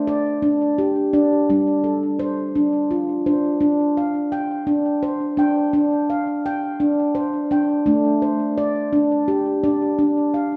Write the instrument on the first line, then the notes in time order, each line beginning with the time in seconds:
handpan
Already playing: D4 C5
0.07 D5
0.42 D4
0.78 G4
1.13 D4 D5
1.49 G3 D4
1.84 A4
2.19 C5
2.55 D4
2.91 F4
3.26 D4 C5
3.61 D4
3.97 F5
4.32 G5
4.67 D4
5.03 C5
5.37 D4 G5
5.73 D4
6.10 F5
6.46 G5
6.80 D4
7.15 C5
7.51 D4 G5
7.86 A3 D4
8.22 C5
8.58 D5
8.93 D4
9.28 G4
9.64 D4 D5
9.99 D4
10.34 F5